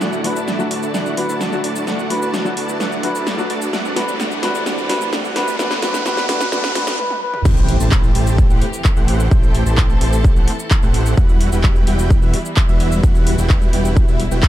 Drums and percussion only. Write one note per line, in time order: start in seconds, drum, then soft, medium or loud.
0.01 snare soft
0.01 cabasa medium
0.13 cabasa soft
0.24 open hi-hat loud
0.36 cabasa medium
0.48 snare soft
0.48 cabasa medium
0.59 cabasa soft
0.71 open hi-hat loud
0.83 cabasa medium
0.94 snare medium
0.94 cabasa medium
1.06 cabasa soft
1.17 open hi-hat loud
1.29 cabasa medium
1.41 snare medium
1.41 cabasa medium
1.52 cabasa soft
1.64 open hi-hat medium
1.76 cabasa medium
1.87 snare medium
1.87 cabasa medium
1.99 cabasa soft
2.10 open hi-hat loud
2.22 cabasa medium
2.34 snare medium
2.34 cabasa medium
2.46 cabasa soft
2.57 open hi-hat medium
2.69 cabasa medium
2.80 snare medium
2.80 cabasa medium
2.92 cabasa soft
3.03 open hi-hat medium
3.15 cabasa medium
3.27 snare medium
3.27 cabasa medium
3.39 cabasa soft
3.50 open hi-hat medium
3.62 cabasa medium
3.73 snare medium
3.73 cabasa medium
3.85 cabasa soft
3.96 snare medium
3.96 open hi-hat loud
4.08 cabasa medium
4.20 snare medium
4.20 cabasa medium
4.32 cabasa soft
4.43 snare medium
4.43 open hi-hat medium
4.55 cabasa medium
4.66 snare medium
4.66 cabasa medium
4.78 cabasa soft
4.89 snare medium
4.89 open hi-hat loud
5.01 cabasa medium
5.13 snare medium
5.13 cabasa medium
5.25 cabasa soft
5.36 snare medium
5.36 open hi-hat medium
5.48 cabasa medium
5.59 snare medium
5.59 cabasa medium
5.71 snare medium
5.71 cabasa soft
5.82 snare medium
5.82 open hi-hat loud
5.94 snare medium
5.94 cabasa medium
6.06 snare loud
6.06 cabasa medium
6.17 snare medium
6.17 cabasa soft
6.29 snare loud
6.29 open hi-hat medium
6.41 snare medium
6.41 cabasa medium
6.52 snare loud
6.52 cabasa medium
6.64 snare medium
6.64 cabasa soft
6.75 snare loud
6.75 open hi-hat loud
6.87 snare medium
6.87 cabasa medium
6.99 high tom medium
7.10 high tom medium
7.34 mid tom medium
7.45 kick loud
7.45 crash loud
7.45 cabasa medium
7.57 cabasa soft
7.69 open hi-hat loud
7.80 cabasa medium
7.92 kick loud
7.92 clap loud
7.92 cabasa medium
8.04 cabasa soft
8.15 open hi-hat medium
8.27 cabasa medium
8.38 kick loud
8.38 cabasa medium
8.50 cabasa soft
8.62 open hi-hat loud
8.73 cabasa medium
8.85 kick loud
8.85 clap loud
8.85 cabasa medium
8.97 cabasa soft
9.08 open hi-hat medium
9.20 cabasa medium
9.31 kick loud
9.31 cabasa medium
9.43 cabasa soft
9.55 open hi-hat loud
9.66 cabasa medium
9.78 kick loud
9.78 clap loud
9.78 cabasa medium
9.90 cabasa soft
10.01 open hi-hat loud
10.13 cabasa medium
10.24 kick loud
10.24 cabasa medium
10.36 cabasa soft
10.48 open hi-hat loud
10.59 cabasa medium
10.71 kick loud
10.71 clap loud
10.71 cabasa medium
10.83 cabasa soft
10.94 open hi-hat medium
11.06 cabasa medium
11.17 kick loud
11.17 cabasa medium
11.29 cabasa soft
11.41 open hi-hat loud
11.52 cabasa medium
11.64 kick loud
11.64 clap loud
11.64 cabasa medium
11.76 cabasa soft
11.87 open hi-hat loud
11.99 cabasa medium
12.10 kick loud
12.10 cabasa medium
12.22 cabasa soft
12.34 open hi-hat loud
12.45 cabasa medium
12.57 kick loud
12.57 clap loud
12.57 cabasa medium
12.69 cabasa soft
12.80 open hi-hat loud
12.92 cabasa medium
13.03 kick loud
13.03 cabasa medium
13.15 cabasa soft
13.27 open hi-hat loud
13.38 cabasa medium
13.50 kick loud
13.50 clap loud
13.50 cabasa medium
13.62 cabasa soft
13.73 open hi-hat loud
13.85 cabasa medium
13.97 kick loud
13.97 cabasa medium
14.08 cabasa soft
14.20 open hi-hat loud
14.31 cabasa medium
14.43 kick loud
14.43 clap loud
14.43 cabasa medium